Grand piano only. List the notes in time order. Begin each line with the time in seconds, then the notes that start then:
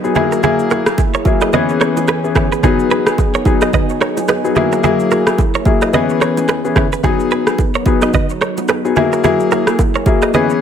0.04 F#3 B3 D#4 G#4
0.15 F#3 A#3 E4 G#4
0.43 F#3 A#3 E4 G#4
1.25 F#3 A#3 E4 G#4
1.53 E3 B3 C#4 G#4
2.24 E3 B3 C#4 G#4
2.63 F#3 B3 D#4 G#4
3.46 F#3 B3 D#4 G#4
4.44 F#3 B3 D#4 G#4
4.55 F#3 A#3 E4 G#4
4.83 F#3 A#3 E4 G#4
5.66 F#3 A#3 E4 G#4
5.93 E3 B3 C#4 G#4
6.64 E3 B3 C#4 G#4
7.03 F#3 B3 D#4 G#4
7.86 F#3 B3 D#4 G#4
8.84 F#3 B3 D#4 G#4
8.96 F#3 A#3 E4 G#4
9.23 F#3 A#3 E4 G#4
10.06 F#3 A#3 E4 G#4
10.34 E3 B3 C#4 G#4